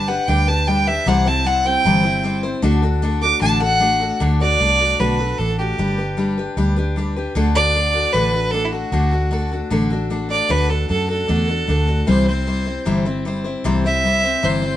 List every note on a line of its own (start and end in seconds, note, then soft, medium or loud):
0.00 0.18 G1 medium
0.08 0.27 D4 soft
0.08 0.28 G4 medium
0.08 0.28 B4 medium
0.08 0.29 F#5 medium
0.28 0.97 D2 medium
0.28 0.47 G3 medium
0.28 0.48 D4 medium
0.28 0.48 G4 medium
0.28 0.46 B4 medium
0.28 0.49 G5 medium
0.47 0.67 D4 soft
0.47 0.68 G4 soft
0.47 0.67 B4 medium
0.47 0.69 A5 medium
0.67 0.87 G3 medium
0.67 0.87 D4 medium
0.67 0.87 G4 medium
0.67 0.86 B4 medium
0.67 0.89 G5 medium
0.87 1.07 D4 soft
0.87 1.07 G4 medium
0.87 1.06 B4 soft
0.87 1.10 E5 medium
1.06 1.75 C2 loud
1.06 1.26 C3 medium
1.06 1.26 E3 medium
1.06 1.26 G3 medium
1.06 1.26 C4 medium
1.06 1.25 E4 medium
1.06 1.24 C5 medium
1.06 1.29 F#5 loud
1.26 1.43 G3 soft
1.26 1.44 C4 soft
1.26 1.45 E4 medium
1.26 1.45 C5 medium
1.26 1.48 A5 medium
1.44 1.64 G3 medium
1.44 1.65 C4 medium
1.44 1.64 E4 medium
1.44 1.64 C5 medium
1.44 1.68 F#5 loud
1.65 1.85 G3 soft
1.65 1.85 C4 soft
1.65 1.85 E4 medium
1.65 1.85 C5 medium
1.65 2.38 G5 loud
1.85 2.54 G1 medium
1.85 2.04 C3 medium
1.85 2.05 E3 medium
1.85 2.05 G3 medium
1.85 2.05 C4 medium
1.85 2.04 E4 medium
1.85 2.03 C5 medium
2.04 2.22 G3 soft
2.04 2.23 C4 soft
2.04 2.24 E4 medium
2.04 2.24 C5 medium
2.23 2.43 G3 medium
2.23 2.43 C4 medium
2.23 2.43 E4 medium
2.23 2.42 C5 medium
2.43 2.62 G3 soft
2.43 2.63 C4 medium
2.43 2.63 E4 medium
2.43 2.63 C5 medium
2.62 3.32 D2 medium
2.62 2.82 D3 medium
2.62 2.83 A3 medium
2.62 2.83 D4 medium
2.62 2.82 F#4 loud
2.62 2.81 A4 loud
2.82 3.02 D4 medium
2.82 3.02 F#4 medium
2.82 3.02 A4 medium
3.02 3.22 A3 medium
3.02 3.22 D4 medium
3.02 3.22 F#4 medium
3.02 3.20 A4 medium
3.22 3.41 D4 soft
3.22 3.42 F#4 medium
3.22 3.42 A4 medium
3.22 3.41 D6 loud
3.41 4.11 A1 medium
3.41 3.61 D3 medium
3.41 3.61 A3 medium
3.41 3.62 D4 medium
3.41 3.60 F#4 medium
3.41 3.59 A4 loud
3.41 3.61 A5 loud
3.60 3.80 D4 soft
3.60 3.80 F#4 medium
3.60 3.81 A4 medium
3.60 4.19 F#5 loud
3.80 4.00 A3 medium
3.80 4.01 D4 medium
3.80 4.00 F#4 medium
3.80 3.99 A4 medium
4.00 4.20 D4 soft
4.00 4.20 F#4 medium
4.00 4.20 A4 medium
4.20 4.55 D2 medium
4.20 4.40 D3 medium
4.20 4.40 A3 medium
4.20 4.40 D4 medium
4.20 4.40 F#4 medium
4.20 4.39 A4 medium
4.40 4.60 D4 soft
4.40 4.60 F#4 soft
4.40 4.60 A4 soft
4.40 5.01 D5 loud
4.60 4.94 C2 medium
4.60 4.80 A3 medium
4.60 4.80 D4 medium
4.60 4.79 F#4 medium
4.60 4.78 A4 medium
4.79 4.99 D4 soft
4.79 4.99 F#4 soft
4.79 4.99 A4 soft
4.99 5.33 B1 medium
4.99 5.19 D3 medium
4.99 5.19 A3 medium
4.99 5.20 D4 medium
4.99 5.19 F#4 medium
4.99 5.18 A4 medium
4.99 5.40 B4 medium
5.19 5.39 D4 soft
5.19 5.39 F#4 medium
5.19 5.39 A4 medium
5.38 5.72 A1 medium
5.38 5.58 A3 medium
5.38 5.59 D4 medium
5.38 5.59 F#4 medium
5.38 5.58 A4 medium
5.38 5.57 A4 medium
5.58 5.78 D4 soft
5.58 5.79 F#4 soft
5.58 6.33 G4 medium
5.58 5.78 A4 soft
5.78 6.47 G1 medium
5.78 5.98 G3 medium
5.78 5.98 D4 medium
5.78 5.97 G4 medium
5.78 5.97 B4 medium
5.98 6.17 D4 soft
5.98 6.17 G4 soft
5.98 6.17 B4 medium
6.17 6.37 G3 medium
6.17 6.37 D4 medium
6.17 6.38 G4 medium
6.17 6.36 B4 medium
6.38 6.56 D4 soft
6.38 6.57 G4 soft
6.38 6.57 B4 medium
6.57 7.26 D2 medium
6.57 6.76 G3 medium
6.57 6.77 D4 medium
6.57 6.76 G4 medium
6.57 6.75 B4 medium
6.76 6.96 D4 medium
6.76 6.97 G4 medium
6.76 6.96 B4 medium
6.96 7.16 G3 medium
6.96 7.16 D4 medium
6.96 7.16 G4 medium
6.96 7.15 B4 medium
7.16 7.35 D4 soft
7.16 7.36 G4 soft
7.16 7.36 B4 soft
7.35 8.05 D2 medium
7.35 7.55 D3 medium
7.35 7.55 A3 medium
7.35 7.55 D4 medium
7.35 7.54 F#4 medium
7.35 7.53 A4 medium
7.54 7.75 F#4 soft
7.54 7.74 A4 medium
7.54 8.14 D5 loud
7.75 7.94 A3 medium
7.75 7.95 D4 medium
7.75 7.94 F#4 medium
7.75 7.93 A4 medium
7.94 8.13 D4 soft
7.94 8.14 F#4 soft
7.94 8.14 A4 soft
8.12 8.83 A1 medium
8.12 8.34 D3 medium
8.12 8.34 A3 medium
8.12 8.34 D4 medium
8.12 8.34 F#4 medium
8.12 8.32 A4 medium
8.12 8.53 B4 medium
8.33 8.52 D4 soft
8.33 8.53 F#4 soft
8.33 8.53 A4 soft
8.51 8.73 A3 medium
8.51 8.73 D4 medium
8.51 8.72 F#4 medium
8.51 8.66 A4 loud
8.51 8.71 A4 medium
8.65 8.73 E4 medium
8.71 8.92 D4 soft
8.71 9.51 F#4 medium
8.71 8.92 F#4 soft
8.71 8.92 A4 soft
8.92 9.61 D2 medium
8.92 9.12 D3 medium
8.92 9.12 A3 medium
8.92 9.13 D4 medium
8.92 9.11 F#4 medium
8.92 9.10 A4 medium
9.11 9.30 D4 soft
9.11 9.31 F#4 soft
9.11 9.31 A4 soft
9.31 9.51 A3 medium
9.31 9.51 D4 medium
9.31 9.51 F#4 medium
9.31 9.50 A4 medium
9.52 9.70 D4 soft
9.52 9.71 F#4 soft
9.52 9.71 A4 medium
9.70 10.40 A1 medium
9.70 9.90 D3 medium
9.70 9.91 A3 medium
9.70 9.91 D4 medium
9.70 9.91 F#4 medium
9.70 9.89 A4 medium
9.90 10.09 D4 soft
9.90 10.10 F#4 medium
9.90 10.10 A4 medium
10.10 10.30 A3 medium
10.10 10.30 D4 medium
10.10 10.29 F#4 medium
10.10 10.27 A4 medium
10.29 10.48 D4 soft
10.29 10.49 F#4 soft
10.29 10.49 A4 soft
10.29 10.52 D5 medium
10.49 10.84 D2 medium
10.49 10.69 D3 medium
10.49 10.69 A3 medium
10.49 10.69 D4 medium
10.49 10.69 F#4 medium
10.49 10.68 A4 medium
10.49 10.71 B4 medium
10.69 10.88 D4 soft
10.69 10.89 F#4 soft
10.69 10.89 A4 medium
10.89 11.23 F#2 medium
10.89 11.09 A3 medium
10.89 11.09 D4 medium
10.89 11.09 F#4 medium
10.89 11.08 A4 medium
11.09 11.28 D4 soft
11.09 11.28 F#4 soft
11.09 11.28 A4 soft
11.09 12.04 A4 medium
11.28 11.62 E2 medium
11.28 11.48 D3 medium
11.28 11.48 A3 medium
11.28 11.48 D4 medium
11.28 11.48 F#4 medium
11.28 11.47 A4 medium
11.48 11.67 D4 soft
11.48 11.68 F#4 soft
11.48 11.68 A4 medium
11.67 12.02 D2 medium
11.67 11.87 A3 medium
11.67 11.88 D4 medium
11.67 11.87 F#4 medium
11.67 11.86 A4 medium
11.87 12.07 D4 soft
11.87 12.08 F#4 medium
11.87 12.07 A4 medium
12.07 12.77 C2 medium
12.07 12.27 C3 medium
12.07 12.27 E3 medium
12.07 12.27 G3 medium
12.07 12.27 C4 medium
12.07 12.27 E4 medium
12.07 12.25 C5 medium
12.07 12.26 C5 medium
12.27 12.45 G3 soft
12.27 12.46 C4 soft
12.27 12.46 E4 soft
12.27 12.46 C5 soft
12.27 13.02 C5 medium
12.47 12.66 G3 medium
12.47 12.66 C4 medium
12.47 12.65 E4 medium
12.47 12.65 C5 medium
12.66 12.85 G3 soft
12.66 12.85 C4 soft
12.66 12.86 E4 soft
12.66 12.86 C5 medium
12.85 13.55 G1 medium
12.85 13.05 C3 medium
12.85 13.06 E3 medium
12.85 13.06 G3 medium
12.85 13.05 C4 medium
12.85 13.05 E4 medium
12.85 13.04 C5 medium
13.05 13.24 G3 soft
13.05 13.25 C4 medium
13.05 13.26 E4 medium
13.05 13.25 C5 medium
13.25 13.45 G3 medium
13.25 13.45 C4 medium
13.25 13.44 E4 medium
13.25 13.43 C5 medium
13.44 13.64 G3 soft
13.44 13.64 C4 soft
13.44 13.64 E4 medium
13.44 13.64 C5 medium
13.64 14.34 C2 medium
13.64 13.84 C3 medium
13.64 13.84 E3 medium
13.64 13.84 G3 medium
13.64 13.84 C4 medium
13.64 13.84 E4 medium
13.64 13.83 C5 medium
13.84 14.03 G3 soft
13.84 14.04 C4 soft
13.84 14.04 E4 soft
13.84 14.04 C5 soft
13.84 14.46 E5 loud
14.04 14.24 G3 medium
14.04 14.24 C4 medium
14.04 14.23 E4 medium
14.04 14.22 C5 medium
14.23 14.42 G3 soft
14.23 14.42 C4 soft
14.23 14.43 E4 soft
14.23 14.43 C5 soft
14.43 14.77 G1 medium
14.43 14.63 C3 medium
14.43 14.63 E3 medium
14.43 14.63 G3 medium
14.43 14.62 C4 medium
14.43 14.61 E4 medium
14.43 14.77 C5 medium
14.43 14.61 C5 medium
14.62 14.77 G3 soft
14.62 14.77 C4 soft
14.62 14.77 E4 medium
14.62 14.77 C5 medium